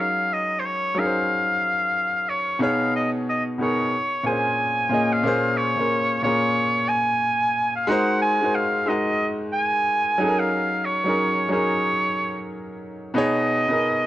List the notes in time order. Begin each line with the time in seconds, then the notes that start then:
Already playing: F#3 C#4 D#4 G#4 A#4
0.00 F5
0.33 D#5
0.59 C5
0.65 C#5
0.94 F#3 C#4 D#4 G#4
0.99 A#4 F5
1.05 C5
2.29 C#5
2.59 B2 B3 D#4 G#4 F5
2.63 C#5
2.96 D#5
3.29 D#5
3.58 B2 B3 D#4 G#4
3.62 A#4 C#5
4.24 A#2 A#3 C4 G#4 G#5
4.28 C5
4.32 C#4
4.90 A#2 A#3 C#4 G#4
4.94 D#5
5.13 F5
5.23 A#2 A#3 C#4 G#4
5.27 C5
5.57 C#5
5.76 A#2 A#3 C#4 G#4
5.81 A#4
6.22 A#2 A#3 C#4 G#4 C#5
6.26 A#4
6.89 G#5
7.76 F5
7.87 G#3 D#4 F#4 A#4 F#5
7.91 C5
8.22 G#5
8.41 G#3 D#4 F#4 A#4 C5
8.55 F5
8.86 G#3 D#4 F#4 A#4 D#5
8.90 D#5
9.53 G#5
10.18 F#3 C#4 D#4 G#4 A4
10.29 A#4
10.40 F5
10.85 C#5
11.04 F#3 C#4 D#4 G#4
11.09 A#4
11.49 F#3 C#4 D#4 G#4 C#5
11.53 A#4
13.14 B2 B3 D#4 G#4 D#5
13.18 C#5
13.68 B2 B3 D#4 G#4
13.72 A#4